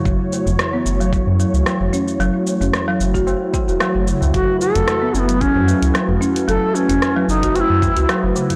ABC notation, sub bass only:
X:1
M:4/4
L:1/16
Q:"Swing 16ths" 1/4=112
K:F#m
V:1 name="Sub bass" clef=bass
F,,, z2 F,,, z2 F,,,3 F,, z C,, z F,,, z2 | F,,, z2 F,,, z2 F,,,3 z2 E,,, z F,,, z C,, | F,,, z2 F,,, z2 F,,,3 F,, z C,, z F,,, z2 | F,,, z2 F,,, z2 F,,,3 F,, z C,, z F,,, z2 |]